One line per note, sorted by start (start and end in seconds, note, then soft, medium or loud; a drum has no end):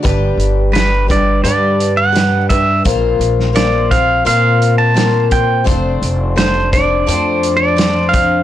0.03 0.37 G1 medium
0.03 0.73 G2 medium
0.03 0.73 D3 medium
0.03 0.71 G3 medium
0.03 0.72 D4 medium
0.03 0.73 G4 medium
0.03 0.73 B4 medium
0.03 kick loud
0.03 closed hi-hat medium
0.37 1.40 G1 medium
0.37 closed hi-hat medium
0.72 1.08 G3 medium
0.72 1.08 D4 medium
0.72 1.08 G4 medium
0.72 1.06 B4 medium
0.72 1.07 B4 medium
0.72 closed hi-hat medium
0.76 snare loud
1.08 1.43 G3 soft
1.08 1.43 D4 soft
1.08 1.44 G4 soft
1.08 1.44 B4 soft
1.08 1.42 D5 medium
1.08 kick medium
1.08 closed hi-hat medium
1.44 2.81 G2 medium
1.44 2.15 G2 medium
1.44 2.15 D3 medium
1.44 2.11 G3 medium
1.44 2.11 D4 medium
1.44 2.13 G4 medium
1.44 2.13 B4 medium
1.44 1.98 D5 medium
1.44 closed hi-hat medium
1.80 closed hi-hat medium
1.97 2.49 F#5 medium
2.12 2.49 G3 medium
2.12 2.49 D4 medium
2.12 2.49 G4 medium
2.12 2.49 B4 medium
2.12 closed hi-hat medium
2.17 snare medium
2.49 2.84 G3 soft
2.49 2.85 D4 soft
2.49 2.85 G4 soft
2.49 2.85 B4 soft
2.49 2.82 E5 medium
2.49 kick medium
2.49 closed hi-hat medium
2.84 3.18 A#1 medium
2.84 3.52 A#3 medium
2.84 3.54 C4 medium
2.84 3.55 F4 medium
2.84 3.56 C5 medium
2.84 kick loud
2.84 closed hi-hat medium
3.19 4.21 A#1 medium
3.19 closed hi-hat medium
3.40 snare soft
3.53 3.89 A#3 medium
3.53 3.90 C4 medium
3.53 3.90 F4 medium
3.53 3.90 C5 medium
3.53 3.92 D5 medium
3.53 snare loud
3.53 closed hi-hat medium
3.91 4.24 C4 soft
3.91 4.25 F4 soft
3.91 4.25 C5 soft
3.91 4.23 F5 medium
3.91 kick medium
3.91 closed hi-hat medium
4.25 5.62 A#2 medium
4.25 4.93 A#3 medium
4.25 4.94 C4 medium
4.25 4.95 F4 medium
4.25 4.95 C5 medium
4.25 4.78 F5 medium
4.25 closed hi-hat medium
4.62 closed hi-hat medium
4.78 5.27 A5 medium
4.94 5.65 A#3 medium
4.94 5.64 C4 medium
4.94 5.66 F4 medium
4.94 5.65 C5 medium
4.94 snare medium
4.94 closed hi-hat medium
5.31 5.64 G5 medium
5.31 kick medium
5.31 closed hi-hat medium
5.64 6.00 F1 medium
5.64 6.36 F3 medium
5.64 6.34 A3 medium
5.64 6.35 C4 medium
5.64 6.36 D4 medium
5.64 6.37 C5 medium
5.64 kick loud
5.64 closed hi-hat medium
6.02 7.03 F1 medium
6.02 closed hi-hat medium
6.36 6.72 A3 medium
6.36 6.72 C4 medium
6.36 6.72 D4 medium
6.36 6.70 C5 medium
6.36 6.71 C5 medium
6.36 snare loud
6.36 closed hi-hat medium
6.72 7.07 C4 soft
6.72 7.06 D4 soft
6.72 7.07 C5 soft
6.72 7.55 D5 medium
6.72 kick medium
6.72 closed hi-hat medium
7.07 8.43 F2 medium
7.07 7.78 F3 medium
7.07 7.75 A3 medium
7.07 7.75 C4 medium
7.07 7.76 D4 medium
7.07 7.77 C5 medium
7.07 closed hi-hat medium
7.43 closed hi-hat medium
7.57 8.13 D5 medium
7.76 8.12 A3 medium
7.76 8.11 C4 medium
7.76 8.11 D4 medium
7.76 8.09 C5 medium
7.76 snare medium
7.76 closed hi-hat medium
8.09 8.43 C4 soft
8.09 8.43 D4 soft
8.09 8.43 C5 soft
8.09 8.43 F5 medium
8.14 kick medium
8.14 closed hi-hat medium